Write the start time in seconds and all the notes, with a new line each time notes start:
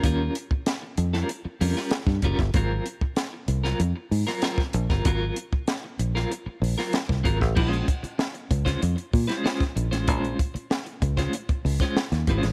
0.04 D#2 G3 C#4 F4 A#4, kick, closed hi-hat
0.35 closed hi-hat
0.51 muted fingered electric bass stroke, muted clean electric guitar stroke, kick
0.66 muted clean electric guitar stroke, snare, closed hi-hat
0.82 muted clean electric guitar stroke
0.98 F2, closed hi-hat
1.13 G3 C#4 F4 A#4, snare
1.29 muted clean electric guitar stroke, closed hi-hat
1.45 muted clean electric guitar stroke, muted fingered electric bass stroke
1.61 F2 G3 C#4 F4 A#4, open hi-hat
1.77 G3 C#4 F4 A#4, snare
1.91 snare, closed hi-hat
2.07 G2, muted clean electric guitar stroke, kick, snare
2.22 F#1 G3 C#4 F4 A#4, kick, closed hi-hat
2.38 G1, muted clean electric guitar stroke, kick, snare
2.54 G#1 F#3 C4 F4 A#4, kick, closed hi-hat
2.86 closed hi-hat
3.01 muted fingered electric bass stroke, muted clean electric guitar stroke, kick
3.16 muted clean electric guitar stroke, snare, closed hi-hat
3.33 muted clean electric guitar stroke
3.48 C2, closed hi-hat
3.64 F#3 C4 F4 A#4, snare
3.80 F2, muted clean electric guitar stroke, closed hi-hat
3.96 muted clean electric guitar stroke
4.11 G#2, open hi-hat
4.27 F#3 C4 F4 A#4, snare
4.42 F#3 C4 F4 A#4, snare, closed hi-hat
4.58 kick, snare
4.73 A#1, muted clean electric guitar stroke, closed hi-hat
4.89 G1 F#3 C4 F4 A#4, kick, snare
5.05 G#1 F#3 C4 F4 A#4, kick, closed hi-hat
5.36 closed hi-hat
5.53 muted clean electric guitar stroke, muted fingered electric bass stroke, kick
5.68 muted clean electric guitar stroke, snare, closed hi-hat
5.84 muted clean electric guitar stroke
5.99 A#1, closed hi-hat
6.15 F#3 C4 F4 A#4, snare
6.31 muted clean electric guitar stroke, closed hi-hat
6.46 muted clean electric guitar stroke, muted fingered electric bass stroke
6.62 A#1, open hi-hat
6.78 F#3 C4 F4 A#4, snare
6.93 snare, closed hi-hat
7.08 C2, muted clean electric guitar stroke, kick, snare
7.24 G#1 F#3 C4 F4 A#4, kick, closed hi-hat
7.40 A1, muted clean electric guitar stroke, kick, snare
7.55 A#1 G3 C4 E4 B4, kick, crash
7.67 G#3 C#4 F4 C5
7.73 closed hi-hat
7.88 kick, closed hi-hat
8.03 muted clean electric guitar stroke, muted fingered electric bass stroke, closed hi-hat
8.18 muted clean electric guitar stroke, snare
8.34 muted clean electric guitar stroke, closed hi-hat
8.51 C#2, kick, closed hi-hat
8.65 G#3 C#4 F4 C5, kick, snare, closed hi-hat
8.81 F2, muted clean electric guitar stroke, closed hi-hat
8.96 muted clean electric guitar stroke, closed hi-hat
9.13 A#2, kick, open hi-hat
9.27 G#3 C#4 F4 C5, snare, closed hi-hat
9.44 G#3 C#4 F4 C5, snare
9.60 kick, snare, closed hi-hat
9.76 A#1, muted clean electric guitar stroke, closed hi-hat
9.91 A1 G#3 C#4 F4 C5, snare, closed hi-hat
10.07 A#1 G#3 C#4 F4 C5, kick, closed hi-hat
10.24 closed hi-hat
10.39 kick, closed hi-hat
10.54 muted clean electric guitar stroke, muted fingered electric bass stroke, closed hi-hat
10.71 muted clean electric guitar stroke, snare
10.86 muted clean electric guitar stroke, closed hi-hat
11.02 C#2, kick, closed hi-hat
11.17 G#3 C#4 F4 C5, kick, snare, closed hi-hat
11.33 muted clean electric guitar stroke, closed hi-hat
11.49 muted clean electric guitar stroke, muted fingered electric bass stroke, kick, closed hi-hat
11.65 C#2, open hi-hat
11.80 G#3 C#4 F4 C5, kick, snare, closed hi-hat
11.97 snare
12.12 D#2, muted clean electric guitar stroke, snare, closed hi-hat
12.27 G#1 G#3 C#4 F4 C5, kick, closed hi-hat
12.43 A1, muted clean electric guitar stroke, snare, closed hi-hat